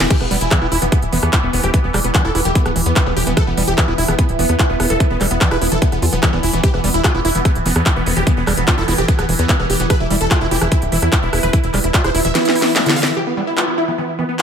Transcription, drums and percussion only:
0.00 snare, closed hi-hat
0.10 kick, closed hi-hat, crash
0.21 cross-stick
0.31 open hi-hat
0.41 closed hi-hat
0.51 kick, cross-stick, clap, closed hi-hat
0.72 open hi-hat
0.82 closed hi-hat
0.92 kick, cross-stick, closed hi-hat
1.02 closed hi-hat
1.13 open hi-hat
1.23 cross-stick, closed hi-hat
1.33 kick, clap, closed hi-hat
1.53 open hi-hat
1.64 cross-stick, closed hi-hat
1.74 kick, closed hi-hat
1.94 cross-stick, clap, open hi-hat
2.04 closed hi-hat
2.15 kick, clap, closed hi-hat
2.35 cross-stick, open hi-hat
2.45 closed hi-hat
2.55 kick, closed hi-hat
2.66 cross-stick, closed hi-hat
2.76 open hi-hat
2.86 closed hi-hat
2.96 kick, clap, closed hi-hat
3.06 cross-stick
3.17 open hi-hat
3.27 closed hi-hat
3.37 kick, cross-stick, closed hi-hat
3.57 open hi-hat
3.68 closed hi-hat
3.78 kick, cross-stick, clap, closed hi-hat
3.98 open hi-hat
4.08 cross-stick, closed hi-hat
4.19 kick, closed hi-hat
4.29 closed hi-hat
4.39 open hi-hat
4.49 cross-stick, closed hi-hat
4.59 kick, clap, closed hi-hat
4.80 cross-stick, open hi-hat
4.90 closed hi-hat
5.00 kick, closed hi-hat
5.21 cross-stick, clap, open hi-hat
5.31 closed hi-hat
5.41 kick, clap, closed hi-hat
5.51 cross-stick
5.62 open hi-hat
5.72 closed hi-hat
5.82 kick, closed hi-hat
5.92 cross-stick, closed hi-hat
6.02 open hi-hat
6.13 closed hi-hat
6.23 kick, cross-stick, clap, closed hi-hat
6.43 open hi-hat
6.53 closed hi-hat
6.64 kick, closed hi-hat
6.74 cross-stick
6.84 open hi-hat
6.94 closed hi-hat
7.04 kick, cross-stick, clap, closed hi-hat
7.25 open hi-hat
7.35 closed hi-hat
7.45 kick, cross-stick, closed hi-hat
7.55 closed hi-hat
7.66 open hi-hat
7.76 cross-stick, closed hi-hat
7.86 kick, clap, closed hi-hat
8.06 open hi-hat
8.17 cross-stick, closed hi-hat
8.27 kick, closed hi-hat
8.47 cross-stick, clap, open hi-hat
8.57 closed hi-hat
8.68 kick, clap, closed hi-hat
8.88 cross-stick, open hi-hat
8.98 closed hi-hat
9.08 kick, closed hi-hat
9.19 cross-stick, closed hi-hat
9.29 open hi-hat
9.39 closed hi-hat
9.49 kick, clap, closed hi-hat
9.59 cross-stick
9.70 open hi-hat
9.80 closed hi-hat
9.90 kick, cross-stick, closed hi-hat
10.10 open hi-hat
10.21 closed hi-hat
10.31 kick, cross-stick, clap, closed hi-hat
10.51 open hi-hat
10.62 cross-stick, closed hi-hat
10.72 kick, closed hi-hat
10.82 closed hi-hat
10.92 open hi-hat
11.02 cross-stick, closed hi-hat
11.12 kick, clap, closed hi-hat
11.33 cross-stick, open hi-hat
11.43 closed hi-hat
11.53 kick, closed hi-hat
11.64 closed hi-hat
11.74 cross-stick, clap, open hi-hat
11.84 closed hi-hat
11.94 kick, clap, closed hi-hat
12.04 cross-stick, closed hi-hat
12.15 open hi-hat
12.25 closed hi-hat
12.35 snare, closed hi-hat
12.45 snare, closed hi-hat
12.55 open hi-hat
12.62 snare
12.76 snare, clap, closed hi-hat
12.86 snare, closed hi-hat
12.96 open hi-hat
13.03 snare, closed hi-hat
13.57 clap

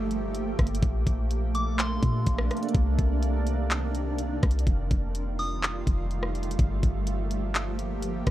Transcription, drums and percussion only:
0.11 closed hi-hat
0.35 closed hi-hat
0.59 kick, cross-stick, closed hi-hat
0.67 closed hi-hat
0.75 closed hi-hat
0.83 kick, closed hi-hat
1.07 kick, closed hi-hat
1.31 closed hi-hat
1.55 closed hi-hat
1.79 clap, closed hi-hat
2.03 kick, closed hi-hat
2.27 kick, closed hi-hat
2.38 cross-stick
2.51 cross-stick, closed hi-hat
2.57 closed hi-hat
2.63 closed hi-hat
2.69 closed hi-hat
2.75 kick, closed hi-hat
2.99 kick, closed hi-hat
3.23 closed hi-hat
3.47 closed hi-hat
3.71 clap, closed hi-hat
3.95 closed hi-hat
4.19 closed hi-hat
4.43 kick, cross-stick, closed hi-hat
4.51 closed hi-hat
4.59 closed hi-hat
4.67 kick, closed hi-hat
4.91 kick, closed hi-hat
5.15 closed hi-hat
5.39 open hi-hat
5.63 clap, closed hi-hat
5.87 kick, closed hi-hat
6.11 closed hi-hat
6.23 cross-stick
6.35 closed hi-hat
6.43 closed hi-hat
6.51 closed hi-hat
6.59 kick, closed hi-hat
6.83 kick, closed hi-hat
7.07 closed hi-hat
7.31 closed hi-hat
7.55 clap, closed hi-hat
7.79 closed hi-hat
8.02 closed hi-hat
8.27 kick, cross-stick, closed hi-hat

